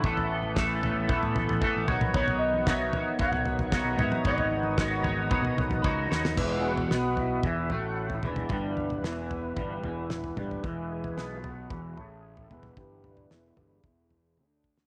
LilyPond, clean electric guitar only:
\new Staff \with { instrumentName = "Clean electric guitar" } { \time 4/4 \key b \dorian \tempo 4 = 113 <a, e a b a'>4 <a, e a b a'>8 <a b a'>8 <e a b a'>4 <e a b a'>8 <b dis' fis' cis''>8 | <b dis' fis' cis''>4 <b dis' fis' cis''>8 <dis' fis' cis''>8 <b dis' fis' cis''>4 <b dis' fis' cis''>8 <dis' fis' cis''>8 | <b dis' fis' cis''>4 <b dis' fis' cis''>8 <dis' fis' cis''>8 <b dis' fis' cis''>4 <b dis' fis' cis''>8 <dis' fis' cis''>8 | <e, e>4 <b, b>4 <e, e>8 <a, a>4 <e, e>8 |
<g, g>4 <e, e>4 <g, g>8 <e, e>4 <g, g>8 | <e, e>4 <b, b>4 <e, e>8 <a, a>4 <e, e>8 | <g, g>4 <e, e>8 <g, g>8 <e, e>4 <d d'>4 | }